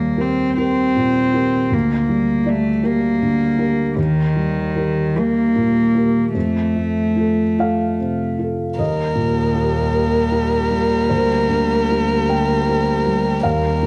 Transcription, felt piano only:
0.00 1.68 D#2 soft
0.00 0.42 G3 soft
0.17 0.53 G4 soft
0.17 0.53 A#4 soft
0.58 0.93 G4 soft
0.58 0.93 A#4 soft
0.96 1.57 A#2 soft
1.34 1.68 G4 soft
1.34 1.68 A#4 soft
1.71 3.92 D2 soft
2.08 2.69 G3 soft
2.46 2.80 G4 soft
2.46 2.80 D5 soft
2.83 3.17 G4 soft
2.83 3.18 A#4 soft
3.22 3.82 D3 soft
3.58 3.93 G4 soft
3.58 3.93 A#4 soft
3.97 6.31 D#2 soft
4.36 5.00 G3 soft
4.76 5.12 G4 soft
4.76 5.12 A#4 soft
5.16 5.52 G4 soft
5.16 5.52 A#4 soft
5.56 6.19 A#2 soft
5.95 6.31 G4 soft
5.95 6.31 A#4 soft
6.34 8.75 F2 soft
6.76 7.43 A3 soft
7.16 7.55 F4 soft
7.16 7.55 A4 soft
7.59 7.96 F4 soft
7.59 7.96 A4 soft
7.59 8.75 F5 medium
7.99 8.63 C3 soft
8.39 8.74 F4 soft
8.39 8.75 A4 soft
8.78 11.05 D#2 soft
8.78 11.05 D#5 medium
9.15 9.77 A#2 soft
9.54 10.16 G4 soft
9.93 10.55 A#4 soft
10.32 10.94 G4 soft
10.71 11.10 G3 soft
11.09 13.40 D2 soft
11.09 12.26 C5 medium
11.49 12.14 D3 soft
11.91 12.54 G4 soft
12.30 12.91 A#4 soft
12.30 13.40 G5 medium
12.69 13.29 G4 soft
13.06 13.44 G3 soft
13.43 13.87 D#2 soft
13.43 13.87 F5 medium
13.83 13.87 A#2 soft

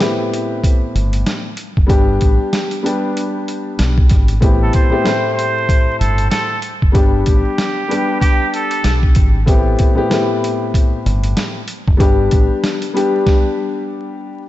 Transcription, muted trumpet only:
4.63 4.74 A4 medium
4.75 5.33 C5 medium
5.34 5.95 C5 medium
5.99 6.28 A4 medium
6.30 6.59 A4 medium
7.25 8.16 G4 medium
8.20 8.49 G4 loud
8.55 9.01 A4 medium

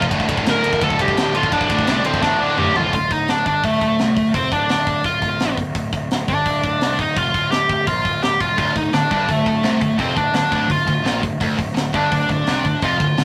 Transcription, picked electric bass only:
0.11 0.38 D1 loud
0.47 0.60 D1 loud
0.65 0.78 D1 medium
0.82 0.95 D1 loud
0.99 1.13 C2 medium
1.18 1.44 D1 medium
1.52 1.65 D1 loud
1.70 1.83 D1 loud
1.88 2.01 C2 loud
2.06 2.19 D1 medium
2.23 2.36 A1 medium
2.41 2.54 D1 medium
2.59 2.72 D1 loud
2.77 2.89 D1 medium
2.93 3.09 D1 medium
3.11 3.27 D1 medium
3.29 3.45 D1 medium
3.46 3.62 G1 medium
3.64 3.80 D1 medium
3.82 3.98 D1 medium
4.00 4.16 C2 medium
4.17 4.33 D1 medium
4.34 4.50 F1 medium
4.52 4.68 D1 medium
4.70 4.86 D1 medium
4.87 5.03 D1 medium
5.05 5.21 D1 medium
5.22 5.39 D1 medium
5.40 5.57 A#1 medium
5.58 5.74 D1 medium
5.75 5.92 D1 medium
5.93 6.09 D1 medium
6.11 6.27 D1 medium
6.28 6.45 G1 medium
6.46 6.62 D1 medium
6.64 6.80 D1 medium
6.81 6.97 C2 medium
6.99 7.15 D1 medium
7.17 7.33 F1 medium
7.34 7.51 D1 medium
7.52 7.68 D1 medium
7.69 7.86 D1 medium
7.87 8.04 A#1 medium
8.05 8.38 D1 medium
8.41 8.57 E1 medium
8.58 8.74 D1 medium
8.76 8.92 D1 medium
8.93 9.09 D1 medium
9.11 9.28 G1 medium
9.29 9.45 D1 medium
9.46 9.62 D1 medium
9.63 9.80 C2 medium
9.82 9.98 D1 medium
9.99 10.16 F1 medium
10.17 10.33 D1 medium
10.35 10.51 D1 medium
10.52 10.69 D1 medium
10.70 10.86 D1 medium
10.88 11.04 D1 medium
11.05 11.21 A#1 medium
11.23 11.40 D1 medium
11.41 11.58 D1 medium
11.59 11.75 D1 medium
11.76 11.93 D1 medium
11.94 12.10 G1 medium
12.12 12.28 D1 medium
12.30 12.46 D1 medium
12.48 12.64 C2 medium
12.65 12.81 D1 medium
12.82 12.99 F1 medium
13.00 13.16 D1 medium
13.19 13.24 D1 medium

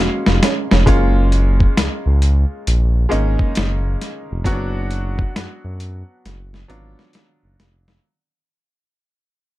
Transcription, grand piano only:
0.00 0.86 G#3 medium
0.00 0.87 A#3 medium
0.00 0.87 C#4 medium
0.00 0.88 F5 medium
0.86 2.38 G#3 medium
0.86 2.39 A#3 medium
0.86 2.39 C#4 medium
0.86 2.40 F4 medium
3.09 4.27 G#3 medium
3.09 4.27 A#3 medium
3.09 4.28 C#4 medium
3.09 4.28 D#4 medium
4.44 5.97 F#3 medium
4.44 5.97 B3 medium
4.44 4.53 C#4 medium
4.44 5.98 F#4 medium
4.52 6.01 D4 medium
6.68 7.86 F#3 medium
6.68 7.86 B3 medium
6.68 7.86 D4 medium
6.68 7.87 F4 medium

